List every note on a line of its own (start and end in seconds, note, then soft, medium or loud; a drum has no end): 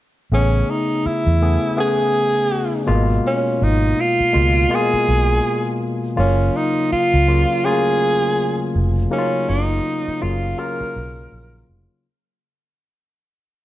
0.32 0.62 A1 medium
0.32 1.05 C#3 medium
0.32 1.06 A3 medium
0.32 1.06 B3 medium
0.32 0.72 C#4 medium
0.32 1.06 G#4 medium
0.70 1.08 D#4 medium
1.06 1.79 E4 medium
1.06 muted fingered electric bass stroke soft
1.26 1.56 E2 medium
1.42 1.68 C#3 medium
1.42 1.68 A3 medium
1.42 1.68 B3 soft
1.42 1.68 G#4 medium
1.77 2.78 C#3 medium
1.77 2.78 A3 medium
1.77 2.78 B3 medium
1.77 2.78 G#4 medium
1.77 2.85 G#4 medium
2.86 3.18 G#1 medium
2.86 4.06 B2 medium
2.86 4.06 G#3 medium
2.86 4.06 A#3 medium
2.86 4.06 F4 loud
3.27 3.65 C#4 medium
3.62 3.92 G#1 medium
3.62 4.02 D#4 medium
4.01 4.76 F4 medium
4.20 muted fingered electric bass stroke soft
4.33 4.65 C#2 medium
4.33 4.60 B2 medium
4.33 4.60 G#3 medium
4.33 4.61 A#3 medium
4.33 4.61 F4 medium
4.70 5.71 B2 medium
4.70 5.71 G#3 medium
4.70 5.71 A#3 medium
4.70 5.71 F4 medium
4.74 5.83 G#4 loud
4.93 muted fingered electric bass stroke soft
5.08 5.38 B1 medium
6.16 6.48 F#1 loud
6.16 6.91 C#3 medium
6.16 6.91 F#3 medium
6.16 6.91 A#3 medium
6.16 6.57 C#4 medium
6.16 6.92 F4 medium
6.56 6.91 D#4 medium
6.92 7.66 F4 medium
6.92 muted fingered electric bass stroke soft
7.14 7.43 C#2 medium
7.27 7.54 C#3 medium
7.27 7.54 F#3 medium
7.27 7.55 A#3 medium
7.27 7.55 F4 medium
7.64 8.65 C#3 medium
7.64 8.65 F#3 medium
7.64 7.72 A3 soft
7.64 8.66 F4 medium
7.64 8.75 G#4 medium
7.72 8.69 A#3 medium
8.75 9.05 F1 medium
9.10 9.85 C#3 medium
9.10 9.85 F#3 medium
9.10 9.85 A#3 medium
9.10 9.50 C#4 medium
9.10 9.19 D#4 medium
9.18 9.89 F4 medium
9.49 9.79 F#1 medium
9.49 10.24 D#4 medium
10.08 muted fingered electric bass stroke soft
10.21 10.52 F#1 medium
10.21 10.48 C#3 medium
10.21 10.48 F#3 medium
10.21 10.48 A#3 medium
10.21 10.48 F4 medium
10.21 10.61 F4 medium
10.58 11.58 C#3 medium
10.58 11.58 F#3 medium
10.58 11.58 A#3 medium
10.58 11.58 F4 medium
10.58 11.69 A#4 medium
10.81 muted fingered electric bass stroke soft
10.96 11.26 B1 medium
11.32 11.62 A#1 medium
11.69 11.86 F1 medium